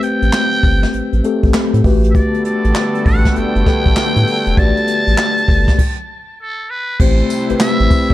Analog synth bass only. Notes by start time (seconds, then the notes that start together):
0.22 A1
0.63 G1
0.94 A1
1.13 A1
1.43 A1
1.74 A2
1.84 A1
2.65 A1
3.06 A1
3.36 G1
3.56 G1
3.86 A1
4.16 A2
4.47 E1
4.57 A1
5.07 A1
5.48 G1
7.00 A1
7.50 A1
7.80 A1
8.10 G1